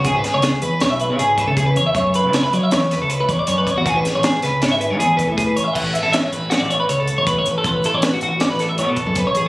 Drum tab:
CC |----------|----------|----------|x---------|
HH |xxxxxxxxxx|xxxxxxxxxx|xxxxxxxxxx|-xxxxxxxxx|
SD |-oo-o-----|--o-oo----|-oooo-----|--o-o-----|
BD |o------oo-|o------o-o|o------oo-|o-------o-|

CC |----------|
HH |xxxxxxxxxx|
SD |--o-oo----|
BD |o------oo-|